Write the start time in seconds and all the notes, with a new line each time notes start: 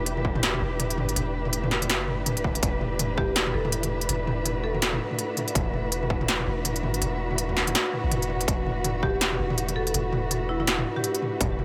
Already playing: E1 A3 D4 E4 G4 B4
0.06 closed hi-hat
0.17 mid tom
0.25 kick
0.35 mid tom
0.43 snare, closed hi-hat
0.54 mid tom
0.61 E1
0.80 closed hi-hat, mid tom
0.90 closed hi-hat
0.98 G1, mid tom
1.09 closed hi-hat
1.16 E1, closed hi-hat, mid tom
1.45 mid tom
1.53 closed hi-hat
1.64 mid tom
1.71 snare
1.82 closed hi-hat, mid tom
1.89 F#1, snare, closed hi-hat
2.08 mid tom
2.26 D1, closed hi-hat, mid tom
2.37 closed hi-hat
2.44 kick, mid tom
2.47 mid tom
2.50 mid tom
2.53 closed hi-hat, mid tom
2.55 mid tom
2.57 mid tom
2.59 E1 E4, kick, closed hi-hat, mid tom
2.81 mid tom
2.99 closed hi-hat, mid tom
3.17 G4, kick, mid tom
3.36 snare, closed hi-hat
3.47 mid tom
3.54 E1 A4
3.65 mid tom
3.72 closed hi-hat
3.83 closed hi-hat, mid tom
4.01 closed hi-hat
4.09 E1, closed hi-hat, mid tom
4.27 mid tom
4.46 closed hi-hat, mid tom
4.53 F#4
4.64 A4
4.74 mid tom
4.82 snare, closed hi-hat
4.93 mid tom
5.11 mid tom
5.19 closed hi-hat
5.37 closed hi-hat, mid tom
5.48 closed hi-hat
5.55 E1, kick, closed hi-hat, mid tom
5.74 mid tom
5.92 closed hi-hat
6.03 mid tom
6.10 kick
6.21 mid tom
6.28 snare, closed hi-hat
6.39 mid tom
6.47 E1
6.65 closed hi-hat, mid tom
6.76 closed hi-hat
6.83 G1, mid tom
6.94 closed hi-hat
7.02 E1, closed hi-hat, mid tom
7.31 mid tom
7.38 closed hi-hat
7.49 mid tom
7.57 snare
7.67 closed hi-hat, mid tom
7.75 snare, closed hi-hat
7.93 mid tom
8.04 A1
8.11 E1, closed hi-hat, mid tom
8.22 closed hi-hat
8.30 mid tom
8.41 closed hi-hat
8.48 E1, kick, closed hi-hat
8.66 mid tom
8.84 closed hi-hat, mid tom
9.03 G4, kick, mid tom
9.21 snare, closed hi-hat
9.32 mid tom
9.39 E1
9.50 mid tom
9.58 closed hi-hat
9.68 closed hi-hat, mid tom
9.76 A4
9.87 A4, closed hi-hat
9.94 E1, closed hi-hat, mid tom
10.13 mid tom
10.31 closed hi-hat, mid tom
10.49 E4
10.60 E4, mid tom
10.67 snare, closed hi-hat
10.78 mid tom
10.96 G4, mid tom
11.04 G4, closed hi-hat
11.15 closed hi-hat
11.22 mid tom
11.41 E1, kick, closed hi-hat, mid tom
11.59 mid tom